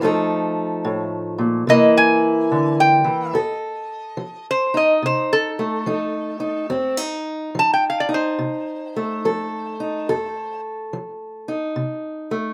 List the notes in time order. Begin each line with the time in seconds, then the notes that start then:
0.01 F2 F3 A3 D#4 A4
0.84 A2
1.38 A#2
1.67 C3 E3 A#3 E4 D#5
1.97 G#5
2.51 D3
2.80 G5
3.04 E3
3.33 F2 A4
3.38 D#5
4.17 F3
4.51 C5
4.74 D#4 D#5
5.02 C3 C5
5.33 A4
5.59 A3
5.86 F3 D#4
6.40 D#4
6.70 F2 C4
6.97 D#4
7.55 F3
7.59 A5
7.74 G5
7.90 F5
8.00 D5
8.09 D#4
8.14 C5
8.39 C3
8.96 A3
9.25 F3 A4
9.80 D#4
10.09 F2 A4
10.93 F3
11.48 D#4
11.76 C3
12.31 A3